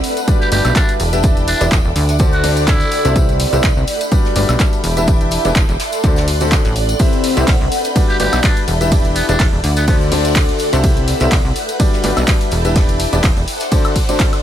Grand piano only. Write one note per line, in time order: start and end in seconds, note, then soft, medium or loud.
0.28 0.48 G3 loud
0.28 0.48 D4 medium
0.28 0.48 F#4 medium
0.28 0.48 G4 medium
0.28 0.48 B4 medium
0.28 0.48 D5 loud
0.52 0.98 G3 medium
0.52 0.98 D4 medium
0.52 0.98 F#4 medium
0.52 0.98 G4 medium
0.52 0.98 B4 medium
0.52 0.98 D5 loud
1.13 1.22 E3 medium
1.13 1.22 D4 medium
1.13 1.22 E4 medium
1.13 1.22 G4 medium
1.13 1.22 B4 medium
1.13 1.22 E5 loud
1.24 1.58 E3 medium
1.24 1.58 D4 medium
1.24 1.58 E4 medium
1.24 1.58 G4 medium
1.24 1.58 B4 medium
1.24 1.58 D5 medium
1.61 1.73 E3 loud
1.61 1.73 D4 medium
1.61 1.73 E4 medium
1.61 1.73 G4 medium
1.61 1.73 B4 medium
1.61 1.73 D5 loud
2.20 2.40 D3 loud
2.20 2.40 D4 medium
2.20 2.40 F#4 medium
2.20 2.40 A4 medium
2.20 2.40 C5 medium
2.20 2.40 D5 loud
2.44 3.02 D3 medium
2.44 3.02 D4 medium
2.44 3.02 F#4 medium
2.44 3.02 A4 medium
2.44 3.02 C5 medium
2.44 3.02 D5 loud
3.05 3.14 D4 medium
3.05 3.14 F#4 medium
3.05 3.14 A4 medium
3.05 3.14 C5 medium
3.05 3.14 E5 loud
3.16 3.50 C3 medium
3.16 3.50 E4 medium
3.16 3.50 G4 medium
3.16 3.50 B4 medium
3.16 3.50 C5 medium
3.16 3.50 E5 medium
3.53 3.65 C3 loud
3.53 3.65 E4 medium
3.53 3.65 G4 medium
3.53 3.65 B4 medium
3.53 3.65 C5 medium
3.53 3.65 E5 loud
4.12 4.32 G3 medium
4.12 4.32 D4 medium
4.12 4.32 F#4 medium
4.12 4.32 G4 medium
4.12 4.32 B4 medium
4.12 4.32 D5 loud
4.36 4.82 G3 medium
4.36 4.82 D4 medium
4.36 4.82 F#4 medium
4.36 4.82 G4 medium
4.36 4.82 B4 medium
4.36 4.82 D5 loud
4.97 5.06 E3 loud
4.97 5.06 D4 medium
4.97 5.06 E4 medium
4.97 5.06 G4 medium
4.97 5.06 B4 medium
4.97 5.06 E5 loud
5.08 5.42 E3 medium
5.08 5.42 D4 medium
5.08 5.42 E4 medium
5.08 5.42 G4 medium
5.08 5.42 B4 medium
5.08 5.42 D5 medium
5.45 5.57 E3 loud
5.45 5.57 D4 medium
5.45 5.57 E4 medium
5.45 5.57 G4 medium
5.45 5.57 B4 medium
5.45 5.57 D5 loud
6.04 6.25 D3 loud
6.04 6.24 D4 medium
6.04 6.24 F#4 medium
6.04 6.24 A4 medium
6.04 6.25 C5 medium
6.04 6.24 D5 loud
6.41 6.61 D3 medium
6.41 6.61 D4 medium
6.41 6.61 F#4 medium
6.41 6.61 A4 medium
6.41 6.61 C5 medium
6.41 6.61 D5 loud
7.00 7.34 C3 medium
7.00 7.34 E4 medium
7.00 7.34 G4 medium
7.00 7.34 B4 medium
7.00 7.34 C5 medium
7.00 7.34 E5 medium
7.37 7.49 C3 loud
7.37 7.49 E4 medium
7.37 7.49 G4 medium
7.37 7.49 B4 medium
7.37 7.49 C5 medium
7.37 7.49 E5 loud
7.96 8.16 G3 medium
7.96 8.16 D4 medium
7.96 8.16 F#4 medium
7.96 8.16 G4 medium
7.96 8.16 B4 medium
7.96 8.16 D5 loud
8.20 8.66 G3 medium
8.20 8.66 D4 medium
8.20 8.66 F#4 medium
8.20 8.66 G4 medium
8.20 8.66 B4 medium
8.20 8.66 D5 loud
8.81 8.90 E3 loud
8.81 8.90 D4 medium
8.81 8.90 E4 medium
8.81 8.90 G4 medium
8.81 8.90 B4 medium
8.81 8.90 E5 loud
8.92 9.26 E3 medium
8.92 9.26 D4 medium
8.92 9.26 E4 medium
8.92 9.26 G4 medium
8.92 9.26 B4 medium
8.92 9.26 D5 medium
9.29 9.41 E3 loud
9.29 9.41 D4 medium
9.29 9.41 E4 medium
9.29 9.41 G4 medium
9.29 9.41 B4 medium
9.29 9.41 D5 loud
9.88 10.08 D3 loud
9.88 10.08 D4 medium
9.88 10.08 F#4 medium
9.88 10.08 A4 medium
9.88 10.08 C5 medium
9.88 10.08 D5 loud
10.12 10.70 D3 loud
10.12 10.70 D4 medium
10.12 10.70 F#4 medium
10.12 10.70 A4 medium
10.12 10.70 C5 medium
10.12 10.70 D5 loud
10.73 10.82 D4 loud
10.73 10.82 F#4 medium
10.73 10.82 A4 medium
10.73 10.82 C5 medium
10.73 10.82 E5 loud
10.84 11.18 C3 medium
10.84 11.18 E4 medium
10.84 11.18 G4 medium
10.84 11.18 B4 medium
10.84 11.18 C5 medium
10.84 11.18 E5 medium
11.21 11.33 C3 loud
11.21 11.33 E4 medium
11.21 11.33 G4 medium
11.21 11.33 B4 medium
11.21 11.33 C5 medium
11.21 11.33 E5 loud
11.80 12.01 G3 loud
11.80 12.00 D4 medium
11.80 12.00 F#4 medium
11.80 12.00 G4 medium
11.80 12.00 B4 medium
11.80 12.00 D5 loud
12.04 12.50 G3 medium
12.04 12.50 D4 medium
12.04 12.50 F#4 medium
12.04 12.50 G4 medium
12.04 12.50 B4 medium
12.04 12.50 D5 loud
12.65 12.74 E3 loud
12.65 12.74 D4 medium
12.65 12.74 E4 medium
12.65 12.74 G4 medium
12.65 12.74 B4 medium
12.65 12.74 E5 loud
12.76 13.10 E3 medium
12.76 13.10 D4 medium
12.76 13.10 E4 medium
12.76 13.10 G4 medium
12.76 13.10 B4 medium
12.76 13.10 D5 medium
13.13 13.25 E3 loud
13.13 13.25 D4 medium
13.13 13.25 E4 medium
13.13 13.25 G4 medium
13.13 13.25 B4 medium
13.13 13.25 D5 loud
13.72 13.92 D3 loud
13.72 13.92 D4 medium
13.72 13.92 F#4 medium
13.72 13.92 A4 medium
13.72 13.92 C5 medium
13.72 13.92 D5 loud
14.09 14.29 D3 medium
14.09 14.29 D4 medium
14.09 14.29 F#4 medium
14.09 14.29 A4 medium
14.09 14.29 C5 medium
14.09 14.29 D5 loud